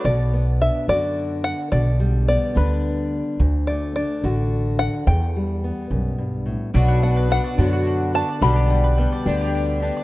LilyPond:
<<
  \new Staff \with { instrumentName = "Five-string banjo" } { \time 6/8 \key b \minor \tempo 4. = 72 d''4 e''8 d''4 fis''8 | d''4 d''8 b'4 r8 | r8 d''8 d''4. fis''8 | g''4. r4. |
r8 fis''8 fis''4. a''8 | b''4. r4. | }
  \new Staff \with { instrumentName = "Mandolin" } { \time 6/8 \key b \minor r2. | r2. | r2. | r2. |
d'16 fis'16 d'16 b'16 d'16 d''16 d'16 fis'16 d'8 d'16 d''16 | d'16 g'16 d'16 b'16 d'16 d''16 d'16 g'16 d'8 d'16 d''16 | }
  \new Staff \with { instrumentName = "Twelve-string acoustic guitar" } { \time 6/8 \key b \minor r2. | r2. | r2. | r2. |
<b, fis b d' fis'>4 <fis b d' fis'>8 <b, fis b d' fis'>4 <b d' fis'>8 | <b, g b d' g'>4 <g b d' g'>8 <b, g b d' g'>4 <b d' g'>8 | }
  \new Staff \with { instrumentName = "Steel-string acoustic guitar" } { \clef bass \time 6/8 \key b \minor << { r8 b8 d'8 fis'4. | r8 g8 b8 d'4.~ | d'8 a8 d'8 fis'4. | r8 g8 b2 |
r8 b8 d'8 fis'4. | r8 g8 b8 d'4. | } \\ { b,4. d4. | b,4. d4. | d,4. d4. | e,4. fis,8 g,8 a,8 |
b,4. d4. | b,4. d4. | } >> }
  \new Staff \with { instrumentName = "Upright bass" } { \clef bass \time 6/8 \key b \minor b,,4. fis,4. | b,,4. d,4. | d,4. a,,4. | e,4. b,,4. |
b,,4. fis,4. | b,,4. d,4. | }
>>